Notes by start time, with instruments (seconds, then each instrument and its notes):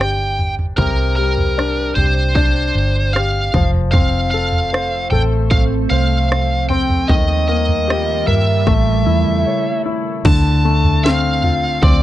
Already playing: fingered electric bass G1, grand piano C3 G3 D4
0.00 grand piano G4, lead electric guitar G5, cross-stick
0.39 floor tom
0.59 floor tom
0.77 fingered electric bass C2, grand piano C3, lead electric guitar A#4, kick, floor tom
1.16 grand piano G3, lead electric guitar A#4
1.37 floor tom
1.58 grand piano D4, cross-stick
1.95 fingered electric bass C2, grand piano G4, lead electric guitar C5, floor tom
2.35 grand piano D4, lead electric guitar C5, kick
2.75 fingered electric bass G1
3.13 grand piano G4, lead electric guitar F5, cross-stick
3.54 fingered electric bass F1, grand piano F3, kick, floor tom
3.74 floor tom
3.92 ambient pad F3 A3 C4 A4 C5, grand piano C4, lead electric guitar F5, kick, floor tom
4.31 grand piano A4, lead electric guitar F5
4.52 floor tom
4.73 grand piano C5, cross-stick
5.11 fingered electric bass A1, grand piano A4, lead electric guitar G5, floor tom
5.51 lead electric guitar F5, kick
5.90 fingered electric bass C2, grand piano C5, lead electric guitar F5
6.32 cross-stick
6.69 grand piano C4, lead electric guitar G5, floor tom
6.90 floor tom
7.08 fingered electric bass D#2, ambient pad D#3 G3 A#3 F4 A#4, grand piano D#3, lead electric guitar D#5, kick, floor tom
7.48 grand piano A#3, lead electric guitar D#5
7.69 floor tom
7.88 grand piano G4, cross-stick
8.27 fingered electric bass G2, grand piano A#4, lead electric guitar E5, floor tom
8.66 fingered electric bass A1, ambient pad C#3 A3 E4 A4, grand piano A3, kick
9.06 fingered electric bass E2, grand piano E4
9.26 floor tom
9.46 grand piano C#5
9.86 grand piano E4
10.25 fingered electric bass D2, grand piano D3, lead electric guitar A5, kick, floor tom, crash
10.65 grand piano A3
10.84 floor tom
11.04 grand piano C4, lead electric guitar F5, snare
11.43 grand piano F4, floor tom
11.83 fingered electric bass D2, grand piano C4, lead electric guitar D5, kick